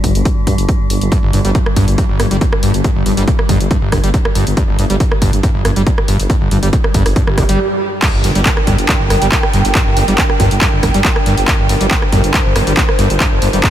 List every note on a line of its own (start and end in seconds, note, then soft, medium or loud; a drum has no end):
0.00 0.12 G1 medium
0.00 7.59 G2 medium
0.00 7.59 G3 medium
0.00 kick medium
0.00 open hi-hat loud
0.15 0.22 G1 medium
0.15 closed hi-hat medium
0.25 kick loud
0.25 closed hi-hat medium
0.47 0.55 G2 medium
0.47 kick medium
0.47 open hi-hat loud
0.58 0.66 G1 medium
0.58 closed hi-hat medium
0.69 kick loud
0.69 closed hi-hat medium
0.90 0.98 G1 loud
0.90 open hi-hat loud
1.01 1.09 G1 medium
1.01 closed hi-hat medium
1.12 1.18 G2 medium
1.12 kick loud
1.12 closed hi-hat medium
1.23 1.32 G1 loud
1.33 1.41 G1 loud
1.33 1.40 G2 medium
1.33 open hi-hat loud
1.45 1.52 G1 medium
1.45 1.50 G3 medium
1.45 closed hi-hat medium
1.55 1.59 A#2 medium
1.55 kick loud
1.55 closed hi-hat medium
1.66 cross-stick medium
1.76 1.84 G1 medium
1.76 1.86 G2 loud
1.76 kick medium
1.76 open hi-hat loud
1.88 1.95 G1 medium
1.88 closed hi-hat medium
1.98 2.04 G2 medium
1.98 kick loud
1.98 closed hi-hat medium
2.09 2.18 G1 loud
2.20 2.28 G1 medium
2.20 2.26 G2 medium
2.20 cross-stick medium
2.20 open hi-hat loud
2.31 2.38 G1 medium
2.31 2.37 G3 medium
2.31 closed hi-hat medium
2.41 2.45 A#2 medium
2.41 kick loud
2.41 closed hi-hat medium
2.53 cross-stick loud
2.63 2.71 G1 loud
2.63 2.72 G2 loud
2.63 open hi-hat loud
2.74 2.81 G1 medium
2.74 closed hi-hat medium
2.84 2.91 G2 medium
2.84 kick loud
2.84 closed hi-hat medium
2.96 3.04 G1 loud
3.06 3.14 G1 loud
3.06 3.12 G2 medium
3.06 open hi-hat loud
3.17 3.25 G1 medium
3.17 3.23 G3 medium
3.17 closed hi-hat medium
3.28 3.31 A#2 medium
3.28 kick loud
3.28 closed hi-hat medium
3.39 cross-stick medium
3.49 3.57 G1 loud
3.49 3.58 G2 loud
3.49 kick medium
3.49 open hi-hat loud
3.60 3.68 G1 medium
3.60 closed hi-hat medium
3.71 3.77 G2 medium
3.71 kick loud
3.71 closed hi-hat medium
3.82 3.91 G1 loud
3.92 4.00 G1 medium
3.92 3.99 G2 medium
3.92 kick medium
3.92 cross-stick loud
3.92 open hi-hat loud
4.04 4.11 G1 medium
4.04 4.09 G3 medium
4.04 closed hi-hat medium
4.14 4.18 A#2 medium
4.14 kick loud
4.14 closed hi-hat medium
4.25 cross-stick loud
4.35 4.43 G1 medium
4.35 4.45 G2 loud
4.35 open hi-hat loud
4.47 4.54 G1 medium
4.47 closed hi-hat medium
4.57 4.63 G2 medium
4.57 kick loud
4.57 closed hi-hat medium
4.68 4.77 G1 loud
4.79 4.87 G1 loud
4.79 4.85 G2 medium
4.79 open hi-hat loud
4.90 4.97 G1 medium
4.90 4.96 G3 medium
4.90 closed hi-hat medium
5.00 5.04 A#2 medium
5.00 kick loud
5.00 closed hi-hat medium
5.12 cross-stick medium
5.22 5.30 G1 medium
5.22 5.31 G2 loud
5.22 kick medium
5.22 open hi-hat loud
5.33 5.40 G1 medium
5.33 closed hi-hat medium
5.43 5.50 G2 medium
5.43 kick loud
5.43 closed hi-hat medium
5.55 5.63 G1 loud
5.65 5.73 G1 medium
5.65 5.71 G2 medium
5.65 cross-stick medium
5.65 open hi-hat loud
5.76 5.83 G1 medium
5.76 5.82 G3 medium
5.76 closed hi-hat medium
5.87 5.90 A#2 medium
5.87 kick loud
5.87 closed hi-hat medium
5.98 cross-stick medium
6.08 6.16 G1 loud
6.08 6.18 G2 loud
6.08 open hi-hat loud
6.19 6.27 G1 medium
6.19 closed hi-hat medium
6.30 6.36 G2 medium
6.30 kick loud
6.30 closed hi-hat medium
6.41 6.50 G1 loud
6.51 6.59 G1 loud
6.51 6.58 G2 medium
6.51 open hi-hat loud
6.63 6.70 G1 medium
6.63 6.68 G3 medium
6.63 closed hi-hat medium
6.73 6.77 A#2 medium
6.73 kick loud
6.73 closed hi-hat medium
6.84 cross-stick medium
6.94 7.02 G1 loud
6.94 7.04 G2 loud
6.94 kick medium
6.94 open hi-hat loud
7.06 7.13 G1 medium
7.06 cross-stick medium
7.06 open hi-hat medium
7.16 7.22 G2 medium
7.16 kick loud
7.16 closed hi-hat medium
7.16 swell medium
7.27 7.39 G1 loud
7.27 cross-stick medium
7.38 7.46 G1 medium
7.38 7.44 F3 loud
7.38 kick medium
7.38 cross-stick medium
7.38 open hi-hat loud
7.49 7.56 G1 medium
7.49 7.59 G3 loud
7.49 closed hi-hat medium
8.02 8.09 G2 medium
8.02 13.70 D4 medium
8.02 13.70 A#4 medium
8.02 kick loud
8.02 clap loud
8.02 closed hi-hat medium
8.02 crash loud
8.02 impact medium
8.14 8.22 G1 loud
8.24 8.32 G1 loud
8.24 8.30 G2 medium
8.24 11.73 G5 medium
8.24 open hi-hat loud
8.35 8.42 G1 medium
8.35 8.41 G3 medium
8.35 closed hi-hat medium
8.46 8.49 A#2 medium
8.46 kick loud
8.46 clap loud
8.46 closed hi-hat medium
8.57 cross-stick medium
8.67 8.75 G1 loud
8.67 8.77 G2 loud
8.67 kick medium
8.67 open hi-hat loud
8.78 8.86 G1 medium
8.78 closed hi-hat medium
8.89 8.95 G2 medium
8.89 kick loud
8.89 clap loud
8.89 closed hi-hat medium
9.00 9.09 G1 loud
9.10 9.18 G1 medium
9.10 9.17 G2 medium
9.10 cross-stick medium
9.10 open hi-hat loud
9.22 9.29 G1 medium
9.22 9.27 G3 medium
9.22 closed hi-hat medium
9.32 9.36 A#2 medium
9.32 kick loud
9.32 clap loud
9.32 closed hi-hat medium
9.43 cross-stick medium
9.53 9.61 G1 loud
9.53 9.63 G2 loud
9.53 open hi-hat loud
9.65 9.72 G1 medium
9.65 closed hi-hat medium
9.75 9.81 G2 medium
9.75 kick loud
9.75 clap loud
9.75 closed hi-hat medium
9.86 9.95 G1 loud
9.97 10.05 G1 loud
9.97 10.03 G2 medium
9.97 open hi-hat loud
10.08 10.15 G1 medium
10.08 10.14 G3 medium
10.08 closed hi-hat medium
10.18 10.22 A#2 medium
10.18 kick loud
10.18 clap loud
10.18 closed hi-hat medium
10.30 cross-stick medium
10.40 10.48 G1 medium
10.40 10.49 G2 loud
10.40 kick medium
10.40 open hi-hat loud
10.51 10.58 G1 medium
10.51 closed hi-hat medium
10.61 10.68 G2 medium
10.61 kick loud
10.61 clap loud
10.61 closed hi-hat medium
10.73 10.81 G1 loud
10.83 10.91 G1 loud
10.83 10.89 G2 medium
10.83 kick medium
10.83 cross-stick medium
10.83 open hi-hat loud
10.94 11.01 G1 medium
10.94 11.00 G3 medium
10.94 closed hi-hat medium
11.05 11.08 A#2 medium
11.05 kick loud
11.05 clap loud
11.05 closed hi-hat medium
11.16 cross-stick medium
11.26 11.34 G1 loud
11.26 11.36 G2 loud
11.26 open hi-hat loud
11.38 11.45 G1 medium
11.38 closed hi-hat medium
11.48 11.54 G2 medium
11.48 kick loud
11.48 clap loud
11.48 closed hi-hat medium
11.59 11.68 G1 loud
11.69 11.77 G1 loud
11.69 11.76 G2 medium
11.69 13.70 C5 medium
11.69 open hi-hat loud
11.81 11.88 G1 medium
11.81 11.86 G3 medium
11.81 closed hi-hat medium
11.91 11.95 A#2 medium
11.91 kick loud
11.91 clap loud
11.91 closed hi-hat medium
12.02 cross-stick medium
12.12 12.20 G1 loud
12.12 12.22 G2 loud
12.12 kick medium
12.12 open hi-hat loud
12.24 12.31 G1 medium
12.24 closed hi-hat medium
12.34 12.40 G2 medium
12.34 kick loud
12.34 clap loud
12.34 closed hi-hat medium
12.45 12.54 G1 loud
12.56 12.64 G1 loud
12.56 12.62 G2 medium
12.56 cross-stick medium
12.56 open hi-hat loud
12.67 12.74 G1 medium
12.67 12.73 G3 medium
12.67 closed hi-hat medium
12.77 12.81 A#2 medium
12.77 kick loud
12.77 clap loud
12.77 closed hi-hat medium
12.89 cross-stick medium
12.99 13.07 G1 loud
12.99 13.08 G2 loud
12.99 open hi-hat loud
13.10 13.17 G1 medium
13.10 closed hi-hat medium
13.20 13.27 G2 medium
13.20 kick loud
13.20 clap loud
13.20 closed hi-hat medium
13.32 13.40 G1 loud
13.42 13.50 G1 loud
13.42 13.48 G2 medium
13.42 open hi-hat loud
13.53 13.60 G1 medium
13.53 13.59 G3 medium
13.53 closed hi-hat medium
13.63 13.67 A#2 medium
13.63 kick loud
13.63 clap loud
13.63 closed hi-hat medium